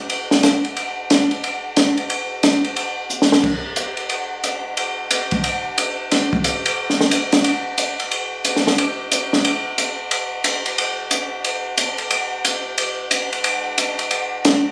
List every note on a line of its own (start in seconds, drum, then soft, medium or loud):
0.10 ride medium
0.31 snare soft
0.43 snare medium
0.43 hi-hat pedal soft
0.43 ride medium
0.65 ride soft
0.77 ride medium
1.10 snare medium
1.10 hi-hat pedal soft
1.10 ride medium
1.31 ride soft
1.44 ride medium
1.76 snare medium
1.76 hi-hat pedal medium
1.76 ride medium
1.97 ride soft
2.10 ride medium
2.43 snare medium
2.43 hi-hat pedal medium
2.43 ride medium
2.64 ride soft
2.76 ride medium
3.10 hi-hat pedal soft
3.22 snare medium
3.32 snare medium
3.44 kick medium
3.44 crash medium
3.76 hi-hat pedal medium
3.76 ride medium
3.97 ride soft
4.09 ride medium
4.44 hi-hat pedal soft
4.44 ride medium
4.77 ride medium
5.11 hi-hat pedal medium
5.11 ride medium
5.31 kick soft
5.31 ride soft
5.44 ride medium
5.78 hi-hat pedal soft
5.78 ride medium
6.11 snare soft
6.11 ride medium
6.33 kick soft
6.44 hi-hat pedal medium
6.44 ride medium
6.66 ride medium
6.90 snare soft
7.01 snare soft
7.11 hi-hat pedal medium
7.11 ride medium
7.32 snare medium
7.32 ride soft
7.44 ride medium
7.78 hi-hat pedal medium
7.78 ride medium
8.00 ride soft
8.11 ride medium
8.45 hi-hat pedal medium
8.45 ride medium
8.56 snare soft
8.67 snare soft
8.78 ride medium
9.12 hi-hat pedal medium
9.12 ride medium
9.33 snare soft
9.45 ride medium
9.78 hi-hat pedal soft
9.78 ride medium
10.11 ride medium
10.44 hi-hat pedal soft
10.44 ride medium
10.66 ride soft
10.78 ride medium
11.11 hi-hat pedal medium
11.11 ride medium
11.44 ride medium
11.78 hi-hat pedal medium
11.78 ride medium
11.98 ride soft
12.11 ride medium
12.45 hi-hat pedal soft
12.45 ride medium
12.78 ride medium
13.11 hi-hat pedal medium
13.11 ride medium
13.33 ride soft
13.44 ride medium
13.78 hi-hat pedal medium
13.78 ride medium
13.99 ride soft
14.11 ride medium
14.45 snare medium
14.45 hi-hat pedal medium
14.45 ride medium